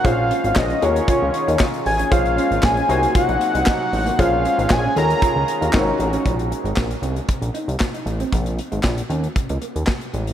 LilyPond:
<<
  \new Staff \with { instrumentName = "Analog synth lead" } { \time 4/4 \key ees \dorian \tempo 4 = 116 f''4 ees''8 des''4. r8 aes''8 | f''4 aes''4 ges''2 | f''4 aes''8 bes''4. r4 | r1 |
r1 | }
  \new Staff \with { instrumentName = "Grand piano" } { \time 4/4 \key ees \dorian <des' f' aes' c''>4. <des' f' aes' bes'>2~ <des' f' aes' bes'>8 | <des' f' aes' c''>4. <ees' ges' bes' c''>2~ <ees' ges' bes' c''>8 | <des' f' aes' c''>4. <des' f' aes' a' bes'>4. <c' des' ees' ges' bes'>4 | r1 |
r1 | }
  \new Staff \with { instrumentName = "Clean electric guitar" } { \time 4/4 \key ees \dorian f'16 r16 des'16 r8 des'16 ees'16 r16 f'16 r8 ees'16 ees'16 r8 des'16 | f'16 r16 des'16 r8 des'16 ees'16 r16 f'16 r8 ees'16 ees'16 r8 bes16 | f'16 r16 des'16 r8 des'16 ees'16 r16 f'16 r8 ees'16 ees'16 r8 des'16 | bes16 r8 aes16 r8 c'16 r8. ees'16 r8 ees'16 r16 c'16 |
bes16 r8 aes16 r8 des'16 r8 bes16 bes16 r8. aes16 r16 | }
  \new Staff \with { instrumentName = "Analog synth pad" } { \time 4/4 \key ees \dorian << { <aes des'>4. <ees des' aes'>2~ <ees des' aes'>8 | aes4. <c ges ees'>2~ <c ges ees'>8 | <aes des'>4. <ees aes'>4. <aes ges'>4 | r1 |
r1 | } \\ { bes4. f'2~ f'8 | bes1~ | bes4. f'4. des'4 | r1 |
r1 | } >> }
  \new Staff \with { instrumentName = "Analog synth bass" } { \clef bass \time 4/4 \key ees \dorian bes,,8. aes,,16 bes,,8 ees,8 r16 des,16 r16 ees,16 r8 a,,8 | bes,,8. aes,,16 bes,,8 c,8 r16 bes,,16 r16 c,16 r8 a,,8 | bes,,8. aes,,16 bes,,8 ees,8 r16 des,16 r16 ees,16 aes,,8 a,,8 | bes,,8. aes,,16 bes,,8 c,8 r16 bes,,16 r16 c,16 r8 a,,8 |
bes,,8. aes,,16 bes,,8 ees,8 r16 des,16 r16 ees,16 r8 a,,8 | }
  \new DrumStaff \with { instrumentName = "Drums" } \drummode { \time 4/4 <hh bd>8 hh16 hh16 <hc bd sn>16 hh16 hh16 hh16 <hh bd>8 hh16 hh16 <hc bd sn>16 hh16 hho16 hh16 | <hh bd>16 hh16 hh16 hh16 <hc bd sn>16 hh16 hh16 hh16 <hh bd>16 hh16 hh16 hh16 <hc bd sn>8 hho16 hh16 | <hh bd>8 hh16 hh16 <hc bd sn>8 hh16 hh16 <hh bd>8 hh16 hh16 <hc bd sn>8 hh16 hh16 | <hh bd>16 hh16 hh16 hh16 <hc bd sn>16 hh16 hh16 hh16 <hh bd>16 hh16 hh16 hh16 <hc bd sn>16 hh16 hh16 hh16 |
<hh bd>16 hh16 hh16 hh16 <hc bd sn>16 hh16 hh16 hh16 <hh bd>16 hh16 hh16 hh16 <hc bd sn>16 hh16 hh16 hh16 | }
>>